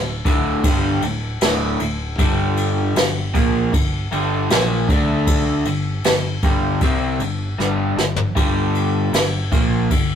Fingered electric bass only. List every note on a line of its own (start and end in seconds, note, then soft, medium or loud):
0.00 0.23 D1 medium
0.25 0.61 D1 medium
0.63 1.00 G1 loud
1.02 1.38 D1 medium
1.41 1.77 D1 loud
1.80 2.16 D1 medium
2.19 2.92 G1 loud
2.96 3.32 G1 medium
3.34 3.70 A#1 loud
3.73 4.09 G1 medium
4.10 4.47 G1 medium
4.51 4.86 A#1 medium
4.89 5.62 D2 medium
5.65 6.01 G1 medium
6.04 6.40 G1 medium
6.43 6.79 G1 medium
6.81 7.17 C2 loud
7.19 7.55 G1 medium
7.58 7.94 G1 medium
7.96 8.33 G1 medium
8.37 9.09 G1 medium
9.12 9.48 G1 medium
9.51 9.87 A#1 medium
9.91 10.15 G1 medium